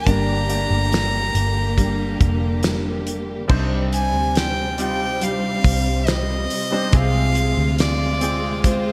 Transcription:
Already playing: string section G4
0.06 fingered electric bass G1, nylon-string guitar G2 D3 G3 A#3 D4 A#4, grand piano G2 A#3 D4 G4 D5, string section D3 A#3, violin A#5, kick, closed hi-hat
0.48 grand piano A3 D4 G4 D5, closed hi-hat
0.54 grand piano A#3
0.71 fingered electric bass G1
0.92 nylon-string guitar G3 A#3 D4 A#4, snare, closed hi-hat
1.35 fingered electric bass G1, closed hi-hat
1.77 nylon-string guitar G3 A#3 D4 A#4, kick, closed hi-hat
2.21 fingered electric bass F1, kick, closed hi-hat
2.63 nylon-string guitar G3 A#3 D4 A#4, snare, closed hi-hat
3.07 closed hi-hat
3.48 fingered electric bass C2, nylon-string guitar C3 G3 C4, grand piano C3 G3 C4 D4 D#4 C5, string section C3 G3 C4, kick, crash
3.52 nylon-string guitar D4
3.93 violin G#5, hi-hat pedal, open hi-hat
4.14 fingered electric bass D2
4.35 violin G5, snare, hi-hat pedal, open hi-hat
4.78 grand piano G3 C4 D#4 F4, violin G5, hi-hat pedal, open hi-hat
5.20 nylon-string guitar G3 C4 D4 G4, violin F5, hi-hat pedal, open hi-hat
5.64 fingered electric bass C2, kick, hi-hat pedal, open hi-hat
6.07 nylon-string guitar G3 C4 G4, violin D#5, snare, hi-hat pedal, open hi-hat
6.50 hi-hat pedal, open hi-hat
6.71 grand piano G3 C4 D4 D#4 C5
6.91 fingered electric bass C2, nylon-string guitar C3 G#3 C4 F4, grand piano C3 C4 F4 G#4, string section G#3 F4, violin F5, kick, hi-hat pedal, open hi-hat
6.96 nylon-string guitar G#4
7.35 hi-hat pedal, open hi-hat
7.57 fingered electric bass D2
7.78 violin D5, snare, hi-hat pedal, open hi-hat
8.21 grand piano C4 F4 G#4, hi-hat pedal, open hi-hat
8.64 nylon-string guitar G#3 C4 F4 G#4, violin C5, kick, hi-hat pedal, open hi-hat

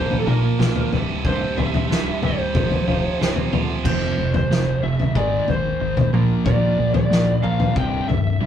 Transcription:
Already playing: fingered electric bass A#1, distorted electric guitar A#2 F3 A#3, clean electric guitar A#2 F3 A#3 F4, lead electric guitar C5
0.11 floor tom
0.19 lead electric guitar A4
0.26 fingered electric bass A#1, distorted electric guitar A#2 F3 A#3, clean electric guitar A#4, lead electric guitar A#4, mid tom
0.59 fingered electric bass B1, distorted electric guitar A#2 F3 A#3, clean electric guitar F4, snare, mid tom
0.76 floor tom
0.92 fingered electric bass C1, clean electric guitar C2, distorted electric guitar C2 G2 C3, floor tom
1.24 fingered electric bass C1, distorted electric guitar C2 G2 C3, clean electric guitar C2, lead electric guitar C5, kick, floor tom
1.57 fingered electric bass C1, distorted electric guitar C2 G2 C3, clean electric guitar C3, lead electric guitar E5, floor tom
1.74 floor tom
1.89 fingered electric bass C1, distorted electric guitar C2 G2 C3, clean electric guitar G2, snare
2.21 fingered electric bass C1, distorted electric guitar C2 G2 C3, clean electric guitar G3, lead electric guitar C5, floor tom
2.55 fingered electric bass F1, clean electric guitar F2, distorted electric guitar F2 C3 F3, kick, floor tom
2.71 floor tom
2.87 fingered electric bass F1, distorted electric guitar F2 C3 F3, clean electric guitar F4, floor tom
3.19 fingered electric bass C1, distorted electric guitar F2 C3 F3, clean electric guitar C4, snare
3.36 floor tom
3.52 fingered electric bass D2, distorted electric guitar F2 C3 F3, clean electric guitar F4, floor tom
3.85 fingered electric bass F1, clean electric guitar F2 C3 F3, lead electric guitar C5, kick, floor tom, crash
4.18 fingered electric bass F1, clean electric guitar F2, distorted electric guitar C3
4.34 lead electric guitar C5, floor tom
4.50 fingered electric bass F1, clean electric guitar F2 C3, snare
4.83 fingered electric bass F1, clean electric guitar F2 C3, lead electric guitar E5
5.00 floor tom
5.15 fingered electric bass G#1, clean electric guitar G#2 D#3 G#3, lead electric guitar D5, kick
5.48 fingered electric bass G#1, clean electric guitar G#2, distorted electric guitar D#3, lead electric guitar C5, floor tom
5.81 fingered electric bass G#1, clean electric guitar G#2 D#3
5.97 floor tom, mid tom
6.13 fingered electric bass A#1, clean electric guitar A#2 F3 A#3
6.45 fingered electric bass A#1, clean electric guitar A#2 F3 A#3, lead electric guitar D5, kick, floor tom
6.78 fingered electric bass A#1, clean electric guitar A#2, distorted electric guitar F3
6.94 lead electric guitar D5, floor tom
7.10 fingered electric bass A#1, clean electric guitar A#2 F3, snare
7.43 fingered electric bass A#1, clean electric guitar A#2 F3 A#3, lead electric guitar F5
7.60 floor tom
7.76 fingered electric bass C1, clean electric guitar C2 G2 C3, lead electric guitar G5, kick
8.08 fingered electric bass C1, clean electric guitar C2 G2, lead electric guitar E5, floor tom
8.40 fingered electric bass F1, clean electric guitar C2 G2

